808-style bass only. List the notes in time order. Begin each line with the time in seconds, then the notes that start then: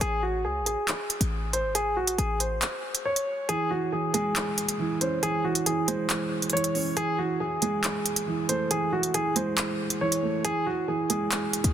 0.01 A1
0.45 C#2
0.61 A1
1.21 A1
1.64 G#1
1.91 A1
2.18 A1
11.64 C#2